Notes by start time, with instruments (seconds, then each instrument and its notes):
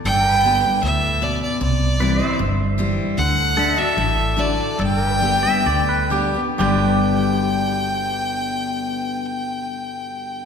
0.05 fingered electric bass G1, steel-string acoustic guitar G2, pedal steel guitar A4 D5, fiddle G5
0.31 pedal steel guitar B4
0.44 steel-string acoustic guitar D3 G3 B3 G4
0.64 steel-string acoustic guitar B3 G4
0.83 fingered electric bass D2, steel-string acoustic guitar A2, fiddle E5
1.22 steel-string acoustic guitar B2, fiddle D5
1.42 fiddle D5
1.61 fingered electric bass C2, steel-string acoustic guitar C3, fiddle D5
2.00 steel-string acoustic guitar E3 G3 C4 E4, pedal steel guitar B4 D5
2.19 steel-string acoustic guitar C4 E4, pedal steel guitar C5
2.27 pedal steel guitar E5
2.39 fingered electric bass G1, steel-string acoustic guitar G2
2.78 steel-string acoustic guitar E3 G3 C4 E4
3.18 fingered electric bass D2, steel-string acoustic guitar D3, fiddle F#5
3.56 steel-string acoustic guitar D3 A3 D4 F#4, pedal steel guitar A4 E5
3.74 steel-string acoustic guitar F#4, pedal steel guitar D#5
3.78 steel-string acoustic guitar D4, fiddle E5
3.85 pedal steel guitar D5
3.97 fingered electric bass A1, steel-string acoustic guitar A2
4.37 steel-string acoustic guitar D3 A3 D4 F#4, fiddle D5
4.79 fingered electric bass G1, steel-string acoustic guitar G2, pedal steel guitar A4 D5, fiddle G5
4.97 pedal steel guitar A#4
5.09 pedal steel guitar B4
5.21 steel-string acoustic guitar D3 G3 B3 G4
5.43 steel-string acoustic guitar B3 G4, clean electric guitar E5
5.66 fingered electric bass D2, steel-string acoustic guitar D3, clean electric guitar D5
5.89 clean electric guitar B4
6.10 steel-string acoustic guitar D3 G3 B3 G4, clean electric guitar G4
6.34 steel-string acoustic guitar B3 G4
6.58 fingered electric bass G1, steel-string acoustic guitar G2 B2 D3 G3 B3 G4, clean electric guitar G4, pedal steel guitar B4 D5, fiddle G5